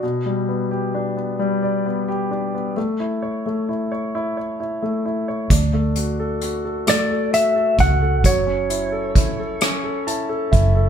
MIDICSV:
0, 0, Header, 1, 5, 480
1, 0, Start_track
1, 0, Key_signature, 2, "major"
1, 0, Tempo, 913242
1, 15, Time_signature, 6, 3, 24, 8
1, 5725, End_track
2, 0, Start_track
2, 0, Title_t, "Electric slide guitar"
2, 0, Program_c, 0, 29
2, 3624, Note_on_c, 0, 74, 68
2, 3855, Note_off_c, 0, 74, 0
2, 3857, Note_on_c, 0, 76, 73
2, 4099, Note_off_c, 0, 76, 0
2, 4102, Note_on_c, 0, 78, 77
2, 4340, Note_on_c, 0, 73, 65
2, 4344, Note_off_c, 0, 78, 0
2, 5276, Note_off_c, 0, 73, 0
2, 5725, End_track
3, 0, Start_track
3, 0, Title_t, "Grand piano"
3, 0, Program_c, 1, 0
3, 0, Control_c, 1, 64, 127
3, 16, Note_on_c, 1, 47, 51
3, 22, Control_c, 1, 64, 0
3, 99, Control_c, 1, 64, 127
3, 136, Note_on_c, 1, 55, 41
3, 256, Note_on_c, 1, 59, 42
3, 374, Note_on_c, 1, 67, 45
3, 496, Note_on_c, 1, 62, 43
3, 605, Note_off_c, 1, 59, 0
3, 613, Note_on_c, 1, 59, 43
3, 724, Note_off_c, 1, 55, 0
3, 732, Note_on_c, 1, 55, 61
3, 854, Note_on_c, 1, 74, 41
3, 969, Note_off_c, 1, 59, 0
3, 977, Note_on_c, 1, 59, 45
3, 1087, Note_off_c, 1, 67, 0
3, 1095, Note_on_c, 1, 67, 48
3, 1207, Note_off_c, 1, 62, 0
3, 1215, Note_on_c, 1, 62, 46
3, 1331, Note_off_c, 1, 59, 0
3, 1339, Note_on_c, 1, 59, 43
3, 1432, Note_off_c, 1, 55, 0
3, 1433, Note_off_c, 1, 47, 0
3, 1435, Note_off_c, 1, 74, 0
3, 1444, Note_off_c, 1, 67, 0
3, 1447, Note_off_c, 1, 62, 0
3, 1453, Note_off_c, 1, 59, 0
3, 1454, Note_on_c, 1, 57, 52
3, 1461, Control_c, 1, 64, 0
3, 1550, Control_c, 1, 64, 127
3, 1576, Note_on_c, 1, 64, 42
3, 1694, Note_on_c, 1, 73, 40
3, 1811, Note_off_c, 1, 57, 0
3, 1819, Note_on_c, 1, 57, 42
3, 1931, Note_off_c, 1, 64, 0
3, 1938, Note_on_c, 1, 64, 43
3, 2050, Note_off_c, 1, 73, 0
3, 2058, Note_on_c, 1, 73, 45
3, 2173, Note_off_c, 1, 64, 0
3, 2181, Note_on_c, 1, 64, 55
3, 2290, Note_off_c, 1, 73, 0
3, 2297, Note_on_c, 1, 73, 39
3, 2411, Note_off_c, 1, 64, 0
3, 2418, Note_on_c, 1, 64, 43
3, 2528, Note_off_c, 1, 57, 0
3, 2536, Note_on_c, 1, 57, 46
3, 2650, Note_off_c, 1, 64, 0
3, 2657, Note_on_c, 1, 64, 46
3, 2768, Note_off_c, 1, 73, 0
3, 2776, Note_on_c, 1, 73, 45
3, 2884, Note_off_c, 1, 57, 0
3, 2888, Note_off_c, 1, 64, 0
3, 2891, Note_off_c, 1, 73, 0
3, 2898, Note_on_c, 1, 62, 50
3, 2900, Control_c, 1, 64, 0
3, 2991, Control_c, 1, 64, 127
3, 3014, Note_on_c, 1, 57, 39
3, 3137, Note_on_c, 1, 66, 42
3, 3257, Note_on_c, 1, 69, 45
3, 3370, Note_off_c, 1, 66, 0
3, 3378, Note_on_c, 1, 66, 45
3, 3488, Note_off_c, 1, 69, 0
3, 3496, Note_on_c, 1, 69, 39
3, 3602, Note_off_c, 1, 57, 0
3, 3610, Note_on_c, 1, 57, 51
3, 3726, Note_off_c, 1, 69, 0
3, 3733, Note_on_c, 1, 69, 40
3, 3845, Note_off_c, 1, 66, 0
3, 3852, Note_on_c, 1, 66, 46
3, 3965, Note_off_c, 1, 69, 0
3, 3972, Note_on_c, 1, 69, 47
3, 4082, Note_off_c, 1, 66, 0
3, 4090, Note_on_c, 1, 66, 42
3, 4205, Note_off_c, 1, 69, 0
3, 4213, Note_on_c, 1, 69, 41
3, 4311, Note_off_c, 1, 57, 0
3, 4314, Note_off_c, 1, 62, 0
3, 4324, Note_off_c, 1, 66, 0
3, 4329, Note_off_c, 1, 69, 0
3, 4330, Note_on_c, 1, 54, 55
3, 4339, Control_c, 1, 64, 0
3, 4444, Control_c, 1, 64, 127
3, 4450, Note_on_c, 1, 61, 39
3, 4572, Note_on_c, 1, 64, 38
3, 4690, Note_on_c, 1, 69, 45
3, 4809, Note_off_c, 1, 64, 0
3, 4817, Note_on_c, 1, 64, 42
3, 4931, Note_off_c, 1, 69, 0
3, 4939, Note_on_c, 1, 69, 41
3, 5047, Note_off_c, 1, 61, 0
3, 5055, Note_on_c, 1, 61, 61
3, 5164, Note_off_c, 1, 69, 0
3, 5172, Note_on_c, 1, 69, 40
3, 5285, Note_off_c, 1, 64, 0
3, 5293, Note_on_c, 1, 64, 44
3, 5293, Note_on_c, 1, 81, 57
3, 5402, Note_off_c, 1, 69, 0
3, 5410, Note_on_c, 1, 69, 46
3, 5516, Note_off_c, 1, 81, 0
3, 5520, Note_off_c, 1, 64, 0
3, 5527, Note_on_c, 1, 76, 53
3, 5528, Note_on_c, 1, 64, 45
3, 5644, Note_off_c, 1, 69, 0
3, 5652, Note_on_c, 1, 69, 44
3, 5725, Note_off_c, 1, 54, 0
3, 5725, Note_off_c, 1, 61, 0
3, 5725, Note_off_c, 1, 64, 0
3, 5725, Note_off_c, 1, 69, 0
3, 5725, Note_off_c, 1, 76, 0
3, 5725, End_track
4, 0, Start_track
4, 0, Title_t, "Fingered electric bass"
4, 0, Program_c, 2, 33
4, 2892, Note_on_c, 2, 38, 66
4, 4071, Note_off_c, 2, 38, 0
4, 4091, Note_on_c, 2, 37, 69
4, 4333, Note_off_c, 2, 37, 0
4, 4333, Note_on_c, 2, 30, 77
4, 5512, Note_off_c, 2, 30, 0
4, 5533, Note_on_c, 2, 30, 75
4, 5725, Note_off_c, 2, 30, 0
4, 5725, End_track
5, 0, Start_track
5, 0, Title_t, "Drums"
5, 2892, Note_on_c, 9, 36, 85
5, 2894, Note_on_c, 9, 42, 74
5, 2945, Note_off_c, 9, 36, 0
5, 2946, Note_off_c, 9, 42, 0
5, 3131, Note_on_c, 9, 42, 41
5, 3184, Note_off_c, 9, 42, 0
5, 3372, Note_on_c, 9, 42, 38
5, 3424, Note_off_c, 9, 42, 0
5, 3612, Note_on_c, 9, 42, 63
5, 3617, Note_on_c, 9, 37, 86
5, 3664, Note_off_c, 9, 42, 0
5, 3669, Note_off_c, 9, 37, 0
5, 3856, Note_on_c, 9, 42, 45
5, 3909, Note_off_c, 9, 42, 0
5, 4092, Note_on_c, 9, 42, 39
5, 4093, Note_on_c, 9, 36, 79
5, 4144, Note_off_c, 9, 42, 0
5, 4145, Note_off_c, 9, 36, 0
5, 4332, Note_on_c, 9, 36, 79
5, 4333, Note_on_c, 9, 42, 77
5, 4385, Note_off_c, 9, 36, 0
5, 4386, Note_off_c, 9, 42, 0
5, 4573, Note_on_c, 9, 42, 44
5, 4626, Note_off_c, 9, 42, 0
5, 4812, Note_on_c, 9, 36, 75
5, 4813, Note_on_c, 9, 42, 43
5, 4864, Note_off_c, 9, 36, 0
5, 4865, Note_off_c, 9, 42, 0
5, 5050, Note_on_c, 9, 42, 62
5, 5056, Note_on_c, 9, 37, 82
5, 5103, Note_off_c, 9, 42, 0
5, 5108, Note_off_c, 9, 37, 0
5, 5297, Note_on_c, 9, 42, 45
5, 5349, Note_off_c, 9, 42, 0
5, 5533, Note_on_c, 9, 36, 74
5, 5535, Note_on_c, 9, 42, 41
5, 5586, Note_off_c, 9, 36, 0
5, 5588, Note_off_c, 9, 42, 0
5, 5725, End_track
0, 0, End_of_file